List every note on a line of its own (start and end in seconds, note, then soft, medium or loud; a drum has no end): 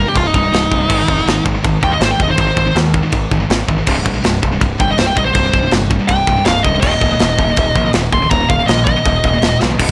0.07 0.14 C2 medium
0.07 0.15 G2 medium
0.07 0.17 G4 medium
0.15 0.28 C1 loud
0.15 0.32 C2 medium
0.15 0.32 G2 medium
0.15 0.27 F4 medium
0.15 kick loud
0.15 china medium
0.27 0.34 D#4 medium
0.34 0.47 C1 medium
0.34 0.42 C2 medium
0.34 0.42 G2 medium
0.34 1.43 D#4 medium
0.34 kick medium
0.43 0.51 C2 medium
0.43 0.52 G2 medium
0.52 0.65 C1 medium
0.52 0.69 C2 medium
0.52 0.69 G2 medium
0.52 snare loud
0.52 china medium
0.71 0.84 C1 medium
0.71 0.79 C2 medium
0.71 0.78 G2 medium
0.71 kick medium
0.80 0.88 C2 medium
0.80 0.89 G2 medium
0.89 1.03 G#1 loud
0.89 0.97 G#2 medium
0.89 0.97 D#3 loud
0.89 0.98 G#3 medium
0.89 kick loud
0.89 crash loud
0.89 china medium
0.98 1.07 G#2 medium
0.98 1.06 D#3 medium
1.08 1.21 F1 medium
1.08 1.15 G#2 medium
1.08 1.15 D#3 medium
1.08 kick medium
1.16 1.25 G#2 medium
1.16 1.25 D#3 medium
1.26 1.40 G#1 medium
1.26 1.43 G#2 medium
1.26 1.43 D#3 medium
1.26 snare loud
1.26 china medium
1.45 1.58 G#1 loud
1.45 1.54 G#2 medium
1.45 1.53 D#3 medium
1.45 kick medium
1.55 1.62 G#2 medium
1.55 1.63 D#3 medium
1.63 1.77 G#1 loud
1.63 1.80 G#2 medium
1.63 1.81 D#3 loud
1.63 kick loud
1.63 china medium
1.83 1.96 D#2 medium
1.83 1.91 G#2 medium
1.83 1.91 D#3 medium
1.83 1.92 G5 medium
1.83 kick medium
1.92 2.01 G#2 medium
1.92 2.01 D#3 medium
1.92 2.01 D#5 loud
2.00 2.13 G#1 loud
2.00 2.18 G#2 medium
2.00 2.18 D#3 medium
2.00 2.10 C5 loud
2.00 snare loud
2.00 china medium
2.11 2.20 G5 medium
2.20 2.32 F1 medium
2.20 2.28 G#2 medium
2.20 2.27 D#3 medium
2.20 2.30 D#5 medium
2.20 kick medium
2.29 2.36 G#2 medium
2.29 2.37 D#3 loud
2.29 2.39 C5 medium
2.37 2.51 G#1 medium
2.37 2.46 G#2 medium
2.37 2.45 D#3 medium
2.37 2.76 C5 loud
2.37 kick loud
2.37 china medium
2.46 2.56 G#2 medium
2.46 2.55 D#3 medium
2.56 2.70 G#1 medium
2.56 2.66 G#2 medium
2.56 2.65 D#3 medium
2.56 kick medium
2.66 2.73 G#2 medium
2.66 2.73 D#3 medium
2.74 3.01 D#2 medium
2.74 2.91 G#2 medium
2.74 2.92 D#3 medium
2.74 snare loud
2.74 china medium
2.94 3.02 G#2 medium
2.94 3.01 D#3 medium
2.94 kick medium
3.03 3.11 G#2 medium
3.03 3.12 D#3 medium
3.12 3.25 G#1 medium
3.12 3.29 G#2 medium
3.12 3.29 D#3 medium
3.12 kick loud
3.12 china medium
3.31 3.44 G#1 medium
3.31 3.40 G#2 medium
3.31 3.39 D#3 medium
3.31 kick medium
3.41 3.49 G#2 medium
3.41 3.49 D#3 medium
3.50 3.62 G#1 medium
3.50 3.67 G#2 medium
3.50 3.67 D#3 medium
3.50 snare loud
3.50 china medium
3.68 3.81 G#1 medium
3.68 3.76 G#2 medium
3.68 3.75 D#3 medium
3.68 kick medium
3.77 3.87 G#2 medium
3.77 3.86 D#3 medium
3.87 4.00 C1 loud
3.87 3.95 C2 medium
3.87 3.96 G2 loud
3.87 3.96 C3 loud
3.87 kick loud
3.87 crash loud
3.87 china medium
3.87 splash medium
3.97 4.05 C2 medium
3.97 4.03 G2 medium
4.05 4.18 A#1 medium
4.05 4.14 C2 medium
4.05 4.14 G2 medium
4.05 kick medium
4.15 4.23 C2 medium
4.15 4.23 G2 medium
4.24 4.38 C1 medium
4.24 4.41 C2 medium
4.24 4.41 G2 medium
4.24 snare loud
4.24 china medium
4.42 4.56 C1 medium
4.42 4.52 C2 medium
4.42 4.51 G2 medium
4.42 kick medium
4.52 4.59 C2 medium
4.52 4.59 G2 medium
4.61 4.74 C1 medium
4.61 4.77 C2 medium
4.61 4.77 G2 medium
4.61 kick loud
4.61 china medium
4.79 4.93 G1 medium
4.79 4.89 C2 medium
4.79 4.88 G2 medium
4.79 4.89 G5 loud
4.79 kick medium
4.90 4.97 C2 medium
4.90 4.97 G2 medium
4.90 4.98 D#5 medium
4.98 5.11 C1 medium
4.98 5.15 C2 medium
4.98 5.15 G2 medium
4.98 5.07 C5 medium
4.98 snare loud
4.98 china medium
5.07 5.16 G5 medium
5.16 5.30 A#1 medium
5.16 5.25 C2 medium
5.16 5.25 G2 medium
5.16 5.25 D#5 medium
5.16 kick medium
5.25 5.34 C2 medium
5.25 5.34 G2 medium
5.25 5.33 C5 medium
5.34 5.48 C1 loud
5.34 5.43 C2 medium
5.34 5.43 G2 medium
5.34 5.70 C5 loud
5.34 kick loud
5.34 china medium
5.44 5.53 C2 medium
5.44 5.53 G2 medium
5.53 5.66 C1 medium
5.53 5.62 C2 medium
5.53 5.61 G2 medium
5.53 kick medium
5.62 5.70 C2 medium
5.62 5.70 G2 medium
5.71 5.98 G1 medium
5.71 5.88 C2 medium
5.71 5.88 G2 medium
5.71 snare loud
5.71 china medium
5.90 5.99 C2 medium
5.90 6.00 G2 medium
5.90 kick medium
6.01 6.08 C2 medium
6.01 6.08 G2 medium
6.08 6.22 C1 loud
6.08 6.26 C2 medium
6.08 6.26 G2 loud
6.08 6.44 G5 loud
6.08 kick loud
6.08 china medium
6.27 6.40 C1 medium
6.27 6.37 C2 medium
6.27 6.36 G2 medium
6.27 kick medium
6.37 6.44 C2 medium
6.37 6.45 G2 medium
6.45 6.59 C1 loud
6.45 6.63 C2 medium
6.45 6.63 G2 loud
6.45 6.64 F5 medium
6.45 snare loud
6.45 china medium
6.63 6.77 C#1 medium
6.63 6.73 C2 medium
6.63 6.73 G2 medium
6.63 6.80 D#5 medium
6.63 kick medium
6.74 6.83 C2 medium
6.74 6.83 G2 loud
6.81 6.96 D#1 loud
6.81 6.91 D#2 loud
6.81 6.92 A#2 medium
6.81 6.92 D#3 loud
6.81 7.90 D#5 loud
6.81 kick loud
6.81 china medium
6.81 crash loud
6.93 7.02 D#2 medium
6.93 7.02 A#2 medium
7.01 7.14 C#1 medium
7.01 7.11 D#2 medium
7.01 7.11 A#2 medium
7.01 kick medium
7.12 7.21 D#2 medium
7.12 7.21 A#2 medium
7.19 7.34 D#1 loud
7.19 7.38 D#2 medium
7.19 7.38 A#2 medium
7.19 snare loud
7.19 china medium
7.38 7.51 D#1 medium
7.38 7.49 D#2 medium
7.38 7.48 A#2 medium
7.38 kick medium
7.49 7.56 D#2 medium
7.49 7.56 A#2 medium
7.56 7.70 D#1 loud
7.56 7.74 D#2 medium
7.56 7.74 A#2 medium
7.56 kick loud
7.56 china medium
7.75 7.88 A#1 loud
7.75 7.84 D#2 medium
7.75 7.83 A#2 medium
7.75 kick medium
7.85 7.93 D#2 medium
7.85 7.93 A#2 medium
7.93 8.07 D#1 medium
7.93 8.11 D#2 medium
7.93 8.11 A#2 medium
7.93 snare loud
7.93 china medium
8.13 8.25 C#1 medium
8.13 8.22 D#2 medium
8.13 8.21 A#2 medium
8.13 8.30 C6 loud
8.13 kick medium
8.22 8.30 D#2 medium
8.22 8.30 A#2 medium
8.30 8.44 D#1 loud
8.30 8.40 D#2 medium
8.30 8.40 A#2 medium
8.30 8.49 A#5 loud
8.30 kick loud
8.30 china medium
8.41 8.49 D#2 medium
8.41 8.49 A#2 medium
8.49 8.62 D#1 medium
8.49 8.58 D#2 medium
8.49 8.58 A#2 medium
8.49 8.67 F5 medium
8.49 kick medium
8.59 8.69 D#2 medium
8.59 8.68 A#2 medium
8.66 8.95 A#1 loud
8.66 8.84 D#5 loud
8.66 snare loud
8.66 china medium
8.71 8.86 D#2 medium
8.71 8.86 A#2 medium
8.85 8.96 D#2 medium
8.85 8.95 A#2 medium
8.85 9.58 D#5 loud
8.85 kick medium
8.96 9.05 D#2 medium
8.96 9.05 A#2 medium
9.06 9.18 D#1 loud
9.06 9.22 D#2 medium
9.06 9.22 A#2 loud
9.06 kick loud
9.06 china medium
9.24 9.37 D#1 loud
9.24 9.32 D#2 medium
9.24 9.32 A#2 medium
9.24 kick medium
9.33 9.41 D#2 medium
9.33 9.41 A#2 medium
9.42 9.55 D#1 loud
9.42 9.59 D#2 medium
9.42 9.59 A#2 medium
9.42 snare loud
9.42 china medium
9.61 9.75 B1 medium
9.61 9.68 D#2 medium
9.61 9.68 A#2 medium
9.61 snare medium
9.69 9.78 D#2 medium
9.69 9.79 A#2 medium
9.78 9.88 C1 loud
9.78 9.86 C2 loud
9.78 9.87 G2 loud
9.78 kick loud
9.78 crash loud
9.78 china medium
9.87 9.91 C2 medium
9.87 9.91 G2 medium